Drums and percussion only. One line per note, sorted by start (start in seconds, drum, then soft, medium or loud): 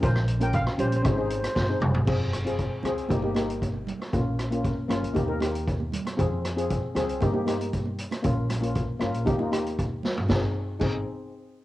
0.03 kick loud
0.03 closed hi-hat medium
0.16 cross-stick medium
0.28 closed hi-hat medium
0.41 closed hi-hat medium
0.41 high conga medium
0.53 kick medium
0.53 closed hi-hat medium
0.67 cross-stick medium
0.79 closed hi-hat medium
0.79 low conga medium
0.92 closed hi-hat medium
0.92 high conga medium
1.05 kick loud
1.05 cross-stick medium
1.05 closed hi-hat medium
1.30 closed hi-hat medium
1.43 cross-stick medium
1.43 closed hi-hat medium
1.43 high conga medium
1.56 kick medium
1.56 snare medium
1.81 mid tom loud
1.81 low conga medium
1.94 floor tom loud
2.07 kick loud
2.07 crash medium
2.33 cross-stick medium
2.33 closed hi-hat medium
2.47 closed hi-hat medium
2.59 kick medium
2.59 closed hi-hat medium
2.83 cross-stick medium
2.83 closed hi-hat medium
2.83 low conga medium
2.98 closed hi-hat medium
3.09 kick medium
3.09 closed hi-hat medium
3.09 high conga medium
3.22 high conga medium
3.35 cross-stick medium
3.35 closed hi-hat medium
3.35 high conga medium
3.50 closed hi-hat medium
3.62 kick medium
3.62 closed hi-hat medium
3.74 high conga medium
3.87 closed hi-hat medium
3.87 low conga medium
3.99 cross-stick medium
3.99 closed hi-hat medium
3.99 high conga medium
4.13 kick loud
4.13 closed hi-hat medium
4.39 cross-stick medium
4.39 closed hi-hat medium
4.52 closed hi-hat medium
4.64 kick medium
4.64 closed hi-hat medium
4.89 cross-stick medium
4.89 closed hi-hat medium
4.89 low conga medium
5.04 closed hi-hat medium
5.15 kick loud
5.15 closed hi-hat medium
5.15 high conga medium
5.28 high conga medium
5.40 cross-stick medium
5.40 closed hi-hat medium
5.40 high conga medium
5.55 closed hi-hat medium
5.68 kick medium
5.68 closed hi-hat medium
5.80 high conga medium
5.92 closed hi-hat medium
5.92 low conga medium
6.05 cross-stick medium
6.05 closed hi-hat medium
6.05 high conga medium
6.19 kick loud
6.19 closed hi-hat medium
6.45 cross-stick medium
6.45 closed hi-hat medium
6.58 closed hi-hat medium
6.70 kick medium
6.70 closed hi-hat medium
6.95 cross-stick medium
6.95 closed hi-hat medium
6.95 low conga medium
7.09 closed hi-hat medium
7.20 kick loud
7.20 closed hi-hat medium
7.20 high conga medium
7.34 high conga medium
7.47 cross-stick medium
7.47 closed hi-hat medium
7.47 high conga medium
7.61 closed hi-hat medium
7.73 kick medium
7.73 closed hi-hat medium
7.86 high conga medium
7.98 closed hi-hat medium
8.11 cross-stick medium
8.11 closed hi-hat medium
8.11 high conga medium
8.24 kick loud
8.24 closed hi-hat medium
8.24 low conga medium
8.49 cross-stick medium
8.49 closed hi-hat medium
8.49 low conga medium
8.63 closed hi-hat medium
8.75 kick medium
8.75 closed hi-hat medium
9.01 cross-stick medium
9.01 closed hi-hat medium
9.01 low conga medium
9.14 closed hi-hat medium
9.26 kick loud
9.26 closed hi-hat medium
9.26 high conga medium
9.39 high conga medium
9.52 cross-stick medium
9.52 closed hi-hat medium
9.52 high conga medium
9.66 closed hi-hat medium
9.79 kick medium
9.79 closed hi-hat medium
10.03 snare medium
10.03 low conga medium
10.17 floor tom medium
10.17 high conga medium
10.29 kick loud
10.29 snare medium
10.29 high conga medium
10.80 kick loud
10.80 crash medium
10.80 high conga medium